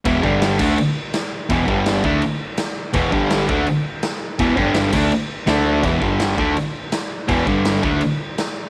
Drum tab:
CC |x-xxx-x-|x-x-x-x-|x-x-x-x-|x-xxx-x-|
SD |--o---o-|--o---o-|--o---o-|--o---o-|
BD |oo-o----|oo-o----|oo-o----|oo-o----|

CC |x-x-x-x-|x-x-x-x-|
SD |--o---o-|--o---o-|
BD |oo-o----|oo-o----|